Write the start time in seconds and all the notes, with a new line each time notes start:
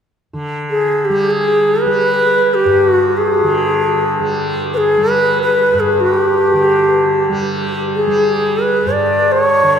0.33 D3
0.70 G#4
1.05 G4
1.10 G3
1.30 G#4
1.82 B4
1.86 G3
2.54 G4
2.65 G2
2.89 F#4
3.17 G#4
3.43 D3
4.19 G3
4.74 G#4 B4
4.97 G3
5.10 B4
5.42 B4
5.73 G2
5.80 G#4
6.00 F#4
6.17 G4
6.53 D3
7.29 G3
7.96 G#4
8.07 G3
8.63 B4
8.85 G2
8.93 D5
9.32 C#5
9.63 D3